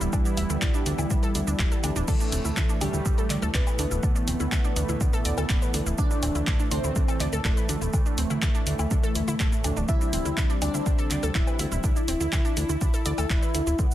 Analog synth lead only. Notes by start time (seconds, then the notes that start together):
Already playing: G3
2.08 A3
2.81 G3
3.54 B3
5.98 D4
6.71 C4
7.45 A3
9.89 E4
10.62 D4
11.35 E4
13.79 B3